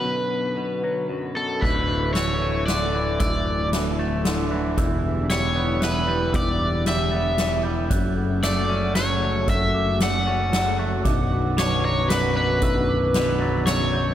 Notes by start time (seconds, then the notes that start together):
Already playing: F#2 B2 D3 F#3 B3 F#4 B4
0.04 B1
0.57 B2
0.84 F#3
1.10 F#2
1.36 B2 A4
1.61 D1 D2 D3 A3 E4 B4 E6, kick, crash
2.13 E3 C#5 E6, snare, closed hi-hat
2.42 A3
2.66 D3 D5 F#6, snare, closed hi-hat
2.95 E3
3.20 D1 D2 D5 E6, kick, closed hi-hat
3.46 D6
3.73 E3, snare, closed hi-hat
3.99 A3 A6
4.25 D3, snare, closed hi-hat
4.51 E3 F#6
4.76 E1 E2 G3 E6, kick, closed hi-hat
5.29 G3 C#5 E6, snare, closed hi-hat
5.56 B3
5.81 E3 B4 F#6, snare, closed hi-hat
6.08 G3
6.33 E1 E2 D5 E6, kick, closed hi-hat
6.59 D6
6.86 G3 E5, snare, closed hi-hat
7.11 B3 A6
7.38 E3, snare, closed hi-hat
7.63 G3 G6
7.90 F#1 F#2 C#3 A3 F#4 F#6, kick, closed hi-hat
8.43 A3 D5 E6, snare, closed hi-hat
8.70 C#4
8.95 F#3 C#5 F#6, snare, closed hi-hat
9.22 A3
9.48 F#1 F#2 E5 E6, kick, closed hi-hat
9.74 D6
10.00 A3 F#5, snare, closed hi-hat
10.27 C#4 A6
10.52 F#3, snare, closed hi-hat
10.79 A3 F#6
11.04 B0 B1 D3 B3 D6, kick, closed hi-hat
11.57 B2 C#5 D6, snare, closed hi-hat
11.85 F#3 C#5
12.09 F#2 B4 F#6, snare, closed hi-hat
12.36 B2 B4
12.62 B0 B1 E6, kick, closed hi-hat
12.89 D6
13.14 B2, snare, closed hi-hat
13.41 F#3 A6
13.66 F#2 C#5, snare, closed hi-hat
13.94 B2 G6